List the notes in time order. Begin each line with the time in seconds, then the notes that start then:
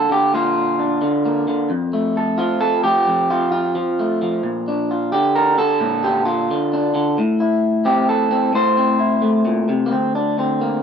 Already playing: A#3 D4 A4
0.10 D3 G4
0.34 A#2 F4
0.79 D4
1.02 D3
1.26 A#3
1.48 D3
1.70 F2
1.93 A3
2.17 A4
2.38 F3 F4
2.61 A4
2.84 F3 G4
3.08 F2
3.30 F4
3.52 F4
3.75 F3
3.99 A3
4.22 F3
4.43 A#2
4.68 D4
4.91 F4
5.12 D3 G4
5.35 A#4
5.58 D3 A4
5.80 A#2
6.04 G4
6.25 F4
6.51 D3
6.73 D4
6.94 D3
7.18 A2
7.40 E4
7.85 C4 G4
8.09 A4
8.31 C4
8.53 A2 C5
8.77 C4
8.99 E4
9.22 A3
9.45 A#2
9.69 C3
9.86 A#3
9.92 D2 C4
10.15 D4
10.38 D3 C4
10.61 A#3